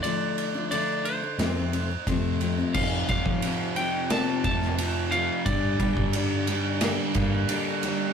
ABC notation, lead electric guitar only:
X:1
M:4/4
L:1/8
Q:1/4=88
K:F
V:1 name="Lead electric guitar"
d2 d c4 z | f f2 g a a2 f | d6- d z |]